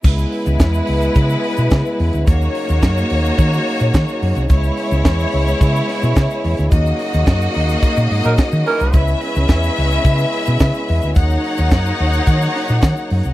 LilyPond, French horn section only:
\new Staff \with { instrumentName = "French horn section" } { \time 4/4 \key cis \dorian \tempo 4 = 108 << { <gis b e'>1 | <fis ais dis'>1 | <gis b e'>1 | <fis ais dis'>1 |
<gis b e'>1 | <fis ais dis'>1 | } \\ { cis1~ | cis1~ | cis1~ | cis1~ |
cis1~ | cis1 | } >> }